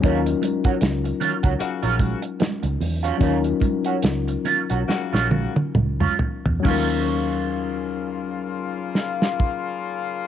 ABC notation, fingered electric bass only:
X:1
M:4/4
L:1/16
Q:"Swing 16ths" 1/4=70
K:Ebm
V:1 name="Fingered electric bass" clef=bass
E,,2 z2 D,,2 z D,, z B,,,2 z2 D,, _F,,2 | E,,2 z2 D,,2 z C,, z B,,,2 z D,,2 z _F,, | E,,16 |]